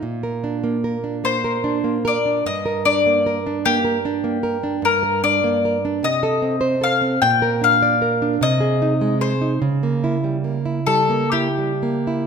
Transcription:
0.02 A#2
0.23 A#4
0.44 D4
0.64 A#3
0.84 A#4
1.04 D4
1.24 A#3 C5
1.44 A#4
1.64 D4
1.84 A#3
2.05 A#4 D5
2.26 D4
2.46 G2 D#5
2.66 A#4
2.85 D4 D5
3.06 A#3
3.26 A#4
3.47 D4
3.65 A#3 G4
3.85 A#4
4.05 D4
4.24 A#3
4.43 A#4
4.63 D4
4.82 G2 A#4
5.03 A#4
5.24 D4 D5
5.44 A#3
5.65 A#4
5.85 D4
6.03 C3 D#5
6.23 A4
6.42 C4
6.61 C5
6.81 A4 F5
7.02 C4
7.22 A#2 G5
7.42 A#4
7.61 D4 F5
7.82 D5
8.02 A#4
8.22 D4
8.41 C3 D#5
8.61 G#4
8.82 D#4
9.01 G#3
9.21 G#4 C5
9.42 D#4
9.62 C#3
9.83 A#3
10.04 E4
10.24 G3
10.44 A#3
10.66 E4
10.87 G3 A4
11.09 A#3
11.32 E4 G4
11.58 G3
11.83 A#3
12.07 E4

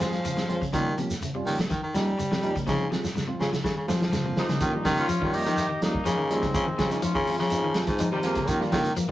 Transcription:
Already playing: G#4
0.00 F3 G#3 C4 F4 G#4 F5, snare, closed hi-hat, high conga, shekere
0.12 snare, closed hi-hat, shekere
0.25 C#3 F5, closed hi-hat, shekere
0.37 C3, snare, closed hi-hat, high conga
0.49 F3 G#3 C4 F4 G#4 C#5, closed hi-hat, high conga, shekere
0.62 C#3, kick, shekere
0.73 C#3 D#3 F3 G3 A#3 C#4 F4 G4, kick, closed hi-hat, low conga, shekere
0.97 C3 F3 A#3 C#4 G4, closed hi-hat, high conga, shekere
1.10 snare, closed hi-hat, shekere
1.22 C#3, closed hi-hat, shekere
1.35 C3 G3 C#4 F4
1.46 D#3 F3 A#3 C#4 G4, open hi-hat, low conga, shekere
1.58 C#3, snare, closed hi-hat, high conga, low conga, shekere
1.70 D#3, kick, closed hi-hat, high conga, shekere
1.83 D#3
1.94 F3 G3 A#3 C#4 D#4 G4, snare, closed hi-hat, high conga, shekere
2.07 shekere
2.19 C#3, closed hi-hat, shekere
2.32 C3, snare, high conga
2.42 F3 G3 A#3 C#4 D#4 G4, closed hi-hat, shekere
2.55 C#3 A#3 C#4, muted clean electric guitar stroke, kick, closed hi-hat, shekere
2.66 C#3 F3 G#3 C4 D#4 G#4, kick, snare, low conga, shekere
2.80 high conga
2.91 C3 F3 G#3 C4 G#4, snare, high conga, shekere
3.04 snare, shekere
3.15 C#3, snare, shekere
3.27 C3 F3 C4 F4
3.40 C#3 F3 G#3 G#4, snare, low conga, shekere
3.53 C#3, snare, high conga, shekere
3.64 C#3 D#3, kick, snare, shekere
3.77 C#3
3.87 F3 G#3 C4 F4 G#4, snare, high conga, shekere
4.01 snare, high conga, shekere
4.08 high conga
4.13 C#3, snare, low conga, shekere
4.24 C3, low conga
4.33 low conga
4.37 F3 G#3 A#3 C4 D#4 F4 G#4, snare, shekere
4.49 C#3 G#3 C4 G#4, snare, low conga, shekere
4.57 closed hi-hat, low conga
4.61 D#3 F3 A#3 C#4 G4, kick, shekere
4.73 D#3 G3 C#4 F4
4.85 C#3 D#3 F3 A#3 C#4 G4, kick, snare, closed hi-hat, shekere
4.97 C#4 F4, closed hi-hat
5.08 D#3 F3, closed hi-hat, shekere
5.21 D#3 G3 C#4 F4, kick
5.33 F3 A#3 C#4 D#4 G4, open hi-hat, shekere
5.46 D#3 F3, snare, closed hi-hat
5.57 closed hi-hat, shekere
5.69 D#3
5.81 F3 G3 A#3 C#4 D#4, snare, closed hi-hat, shekere
5.95 kick
6.05 C#3 F3, closed hi-hat, shekere
6.18 D#3
6.30 F3 G3 G#3 A#3 C4 C#4 D#4 G4, closed hi-hat, shekere
6.42 C#3, kick, snare, closed hi-hat
6.54 C#3 F3 G#3 C4 G#4, kick, closed hi-hat, shekere
6.66 D#3
6.78 C#3 F3 G#3 C4 G#4, kick, snare, closed hi-hat, shekere
6.90 F3 A#3 C4 C#4 D#4, snare, closed hi-hat
7.02 F3 C#4 F4, closed hi-hat, shekere
7.15 C#3 D#3, kick
7.27 F3 G#3 C4 G#4, open hi-hat, shekere
7.39 C#3 F3, snare
7.50 F3 C4 D#4, closed hi-hat, shekere
7.64 D#3
7.74 F3 G#3 C4 G#4, muted clean electric guitar stroke, snare, closed hi-hat, shekere
7.87 G#2, kick, snare, closed hi-hat
7.98 F3 C4 D#4, closed hi-hat, shekere
8.11 C3 D#3 G3
8.23 F3 G#3 A#3 C4 G#4, snare, closed hi-hat, shekere
8.35 C#3, kick, snare, closed hi-hat
8.47 D#3 F3 A#3 C#4 G4, kick, closed hi-hat, shekere
8.60 D#3 G3 C#4 F4, snare
8.72 C#3 D#3 F3 A#3 C#4 G4, kick, snare, closed hi-hat, shekere
8.84 closed hi-hat
8.95 D#3 F3, closed hi-hat, shekere

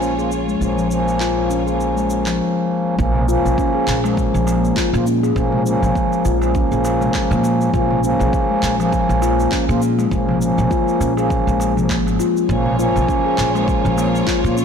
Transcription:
Already playing: A#1 F3 A#3 C#4 F4 C#5
0.01 C#4, shaker
0.17 F3 A#3 F4 G#4, shaker
0.32 shaker
0.48 G#3, shaker
0.60 A#1 F3 A#3 C#4, shaker
0.78 F3, shaker
0.89 F3 A#3 C#4, shaker
1.08 shaker
1.20 F4, clap, shaker
1.50 C#4, shaker
1.65 F3 A#3 G#4, shaker
1.69 C#4
1.80 shaker
1.96 G#3, shaker
2.10 shaker
2.26 F3, clap, shaker
2.97 A#1 F3 A#3 C#4, kick, shaker
3.15 darbuka dum
3.26 F3 A#3 C#4 F4, shaker
3.45 A#1, darbuka dum, shaker
3.58 C#4, kick, shaker
3.74 G#4, darbuka ka
3.88 A#1, clap, shaker
4.03 F3 G#3 A#3 C#4, darbuka ka, darbuka tek, shaker
4.17 kick, shaker
4.34 A#1 F3, shaker
4.47 A#3, darbuka ka, darbuka tek, shaker
4.65 shaker
4.77 F4, kick, clap, shaker
4.92 A#2 F3 A#3 F4, shaker
5.06 C#4, shaker
5.23 G#4, darbuka tek, shaker
5.35 A#1 F3 A#3 C#4, kick, shaker
5.52 G#3, darbuka dum
5.64 F3 A#3, shaker
5.68 C#4
5.82 A#1 F3, darbuka dum, shaker
5.95 kick, shaker
6.12 darbuka ka, shaker
6.25 A#1 F4, shaker
6.40 F3 A#3 C#4, darbuka ka, darbuka tek, shaker
6.55 C#4, kick, shaker
6.72 A#1 G#4, shaker
6.85 darbuka tek, shaker
7.01 G#3, darbuka ka, darbuka dum, shaker
7.14 kick, clap, darbuka tek, shaker
7.31 A#2 F3, darbuka ka, darbuka tek, shaker
7.44 A#3, darbuka tek, shaker
7.61 shaker
7.72 A#1 F3 A#3 C#4 F4, kick, shaker
7.91 darbuka dum
8.01 F3 A#3 C#4, shaker
8.19 A#1 G#4, darbuka dum, shaker
8.33 kick, shaker
8.49 G#3, darbuka ka
8.63 A#1, clap, shaker
8.78 F3 A#3 C#4, darbuka ka, darbuka tek, shaker
8.93 kick, shaker
9.09 A#1, shaker
9.22 F4, darbuka ka, darbuka tek, shaker
9.40 shaker
9.52 C#4, kick, clap, shaker
9.68 A#2 F3 A#3 F4 G#4, shaker
9.82 shaker
9.98 G#3, darbuka tek, shaker
10.10 A#1 F3 A#3 C#4, kick, shaker
10.28 F3, darbuka dum
10.39 F3 A#3, shaker
10.43 C#4
10.58 A#1, darbuka dum, shaker
10.71 F4, kick, shaker
10.87 darbuka ka, shaker
11.00 A#1 C#4, shaker
11.17 F3 A#3 C#4 G#4, darbuka ka, darbuka tek, shaker
11.30 kick, shaker
11.47 A#1 G#3, shaker
11.60 darbuka tek, shaker
11.76 F3 A#3 C#4, darbuka ka, darbuka dum, shaker
11.89 A#3, kick, clap, darbuka tek, shaker
12.07 G#1, darbuka ka, darbuka tek, shaker
12.19 F4, darbuka tek, shaker
12.37 shaker
12.48 A#1 F3 A#3 C#4 F4 C#5, kick, shaker
12.66 darbuka dum
12.77 F3 A#3 C#4 F4, shaker
12.95 A#1, darbuka dum, shaker
13.08 C#4, kick, shaker
13.25 G#4, darbuka ka
13.38 A#1, clap, shaker
13.53 F3 G#3 A#3 C#4, darbuka ka, darbuka tek, shaker
13.68 kick, shaker
13.84 A#1 F3, shaker
13.98 A#3, darbuka ka, darbuka tek, shaker
14.15 shaker
14.27 F4, kick, clap, shaker
14.43 A#2 F3 A#3 F4, shaker
14.57 C#4, shaker

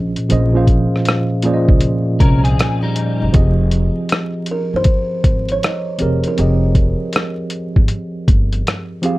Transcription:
Already playing: A#1 A#2 F3 C#4 G#4 C5 D#5
0.16 closed hi-hat
0.28 A#1 A#2 F3 C#4 G#4 C5 D#5, closed hi-hat
0.53 A#2 F3 C#4 G#4 C5 F5
0.67 kick, closed hi-hat
0.96 cross-stick
1.05 cross-stick, closed hi-hat
1.42 A#2 F3 C#4 G#4 C5, closed hi-hat
1.47 D5
1.53 D#5
1.69 C#2, kick
1.81 closed hi-hat
2.20 C2 C#4 A#4, kick, closed hi-hat
2.44 C4 G#4, closed hi-hat
2.59 cross-stick, closed hi-hat
2.83 G3 D#4
2.96 closed hi-hat
3.22 F#1
3.32 F1 F3 C4 G4 G#4 D#5, kick, closed hi-hat
3.71 closed hi-hat
4.09 cross-stick, closed hi-hat
4.46 closed hi-hat
4.51 A#4
4.74 G1 C5
4.84 kick, closed hi-hat
5.24 G#1, kick, closed hi-hat
5.49 C#5, closed hi-hat
5.63 D#5, cross-stick, closed hi-hat
5.98 F1 F3 C4 G4 G#4 A#4, closed hi-hat
6.24 A#4, closed hi-hat
6.37 F1 F3 C4 G4 G#4 D#5, closed hi-hat
6.75 kick, closed hi-hat
7.13 cross-stick, closed hi-hat
7.50 closed hi-hat
7.76 G#1, kick
7.88 closed hi-hat
8.28 G1, kick, closed hi-hat
8.53 closed hi-hat
8.67 cross-stick, closed hi-hat
9.02 F3 C4 G4 G#4 F5, closed hi-hat

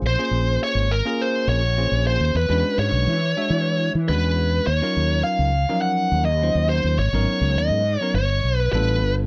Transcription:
0.02 A#1
0.07 C5
0.19 A#3 C#4 F4 G#4 C5
0.31 A#1
0.64 C#5
0.75 G#1
0.91 A#4
1.05 A#3 C#4 F4 G#4 A#4
1.22 C5
1.47 A#1 C#5
1.78 A#3 C#4 F4 G#4 C5
1.91 A#1
2.07 C5
2.20 D#2
2.34 E2 B4
2.49 E2 G#3 C#4 D4 F#4 B4
2.78 G#2 C#5
2.92 B1
3.07 E3
3.37 G#3 D4 F#4 C#5 E5
3.50 E3
3.95 E3
4.08 E2 G#3 C#4 D4 F#4 B4
4.67 D#2 C#5
4.82 F#3 C#4 D#4 F4 A#4
4.96 D#2
5.23 F5
5.39 C#2
5.69 F3 F#3 C#4 D#4 A#4
5.82 F#5
6.11 D#2
6.25 D#5
6.42 F#3 C#4 D#4 F4 C5
6.55 D#2
6.69 C5
6.84 D#2
6.98 G#1 C#5
7.12 G#1 F#3 B3 C#4 D#4 A#4
7.41 C#2
7.55 D#2 D#5
7.70 G#2
8.00 F#3 B3 C#4 D#4 A#4 C#5
8.14 G1 C#5
8.43 B1
8.57 B4
8.72 A1 G3 B3 D4 F4 A4 B4
9.02 G1

